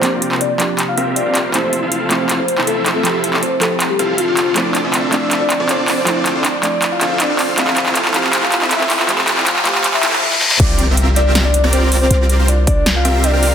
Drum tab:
CC |----------------|----------------|----------------|----------------|
HH |x-x-x-x-x-x-x-x-|x-x-x-x-x-x-x-x-|x-x-x-x-x-x-x-x-|x-x-x-x-x-x-x-o-|
CP |x--x--x-x-----x-|x-----x-x--x--x-|x--x--x-x-----x-|x-x-x-x-x-x-x-x-|
SD |----------------|----------------|----------------|----------------|
BD |----------------|----------------|----------------|----------------|

CC |----------------|----------------|----------------|x---------------|
HH |x-x-x-x-x-x-x-o-|x-x-x-x-x-x-x-o-|x-x-x-x-x-x-----|x-x-x-x-x-x-x-o-|
CP |x-x-x-x-x-x-x-x-|xxxxxxxxxxxxxxxx|xxxxxxxxxxxx----|----------------|
SD |----------------|----------------|-------------ooo|--------o-------|
BD |----------------|----------------|----------------|o---------------|

CC |----------------|
HH |x-x-x-x-x-x-x-o-|
CP |----------------|
SD |--------o-------|
BD |------o---------|